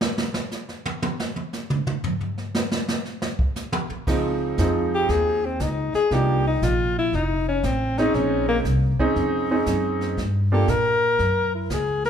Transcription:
0.01 snare
0.18 snare
0.34 snare
0.51 snare, hi-hat pedal
0.69 snare
0.85 high tom
1.02 high tom
1.20 snare
1.36 high tom
1.53 snare, hi-hat pedal
1.70 mid tom
1.87 mid tom
2.04 floor tom
2.21 floor tom
2.38 snare
2.55 snare, hi-hat pedal
2.71 snare
2.88 snare
3.05 snare
3.22 snare
3.39 kick
3.56 snare, hi-hat pedal
3.72 high tom
3.90 muted upright bass stroke, high tom
4.07 C#2 F3 G#3 C4 D#4, brush sweep, kick, snare, crash
4.58 F2 F3 G#3 C4 D#4, kick, snare, hi-hat pedal
4.95 G4
5.09 D#2 G#4, brush sweep, kick, snare
5.45 C4
5.60 C#2 D#4, kick, snare, hi-hat pedal
5.94 G#4, muted upright bass stroke, snare
6.11 C2 F3 A#3 D4 D#4 G4, brush sweep, kick, snare
6.47 D#4
6.62 A#1 F4, kick, snare, hi-hat pedal
6.99 E4
7.12 F1 D#4, brush sweep, kick, snare
7.48 C#4
7.63 A1 C4, kick, snare, hi-hat pedal
7.98 G#3 C4 C#4 D#4, snare
8.14 A#1 C#4, brush sweep, kick, snare
8.48 A#3
8.65 C2, kick, snare, hi-hat pedal
8.99 G#3 C4 C#4 D#4, muted upright bass stroke, kick
9.16 F2, brush sweep, kick, snare
9.51 G#3 C4 C#4 D#4
9.66 F#2, kick, snare, hi-hat pedal
10.01 snare
10.17 G2, brush sweep, kick, snare
10.52 A#3 D4 F4 G4 A4
10.68 A#2 A#4, kick, snare, hi-hat pedal
11.19 F#2, brush sweep, kick, snare
11.55 E4
11.70 C#2 G#4, kick, snare, hi-hat pedal
12.05 A#4, snare

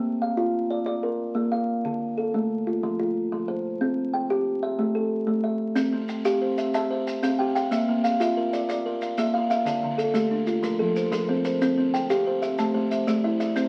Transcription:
Already playing: A#3
0.22 F5
0.37 F4
0.71 D5
0.86 D5
1.03 A#4
1.35 A#3
1.52 F5
1.85 D3
2.18 A4
2.34 A3
2.67 F4
2.83 F3
2.99 F4
3.32 F3
3.48 C5
3.81 C4
4.13 G5
4.30 G4
4.63 E5
4.79 A3
4.95 A4
5.27 A3
5.44 E5
5.75 C4, maracas
5.93 C4
6.09 G5, maracas
6.25 G4 F5, maracas
6.41 C5
6.58 E5, maracas
6.74 E5 A5, maracas
6.91 C5 E5
7.07 G5, maracas
7.23 C4 F5, maracas
7.39 G4 G5
7.55 F5 G5, maracas
7.71 A#3 E5, maracas
7.88 A#3
8.04 F5, maracas
8.20 F4 E5, maracas
8.37 A#4
8.53 D5, maracas
8.69 D5, maracas
8.86 A#4
9.02 F5, maracas
9.18 A#3 E5, maracas
9.34 F4 F5
9.50 E5 F5, maracas
9.65 D3 D5, maracas
9.83 D3
9.98 A4, maracas
10.14 A3 G4, maracas
10.31 D4
10.47 F4, maracas
10.63 F3 A#4, maracas
10.79 F3 A4
10.96 C5, maracas
11.12 F3 A#4, maracas
11.28 C4 C5
11.45 A#4 C5, maracas
11.62 C4, maracas
11.78 C4
11.94 G5, maracas
12.10 G4 F5, maracas
12.26 C5
12.42 E5, maracas
12.58 A3 A5, maracas
12.74 A3 C5
12.91 E5, maracas
13.08 A3 D5, maracas
13.24 E4 E5
13.40 D5 E5, maracas
13.56 C4 C5, maracas

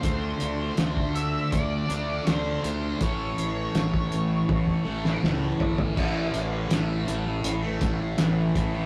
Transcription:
Already playing: F4 C5
0.03 D2 D3 A3 D4 A4, kick, closed hi-hat
0.40 D2, closed hi-hat
0.77 D2, snare, closed hi-hat
0.97 kick
1.15 E5, closed hi-hat
1.52 D2 D5, kick, closed hi-hat
1.89 D2 A3 D4, closed hi-hat
1.93 D3
2.25 D2 D3 A3, snare, closed hi-hat
2.29 D4 C5
2.64 D2 C5, closed hi-hat
2.99 A1 A2 E3 C#4, kick, closed hi-hat
3.03 A3 C#5
3.37 A1, closed hi-hat
3.75 A1, snare, closed hi-hat
3.94 kick
4.12 A1, closed hi-hat
4.49 A1, kick, high tom
4.67 kick
4.85 A1 A2 E3 A3
5.05 snare
5.22 C#2 A2 E3 A3, snare
5.60 G1, floor tom
5.78 floor tom
5.95 A1 A2 E3 A3 C#4 A4, kick, crash
6.34 A1, closed hi-hat
6.69 A1 A2 E3 A3, snare, closed hi-hat
7.07 A1 A2 E3 A3, closed hi-hat
7.26 muted distorted electric guitar stroke
7.44 A1, closed hi-hat
7.63 E3 A3
7.80 A1 A2 E3 A3, kick, closed hi-hat
8.01 muted distorted electric guitar stroke
8.18 A1 A2 E3 A3, snare, closed hi-hat
8.54 A1 A2 E3 A3, kick, closed hi-hat
8.74 E3 A3

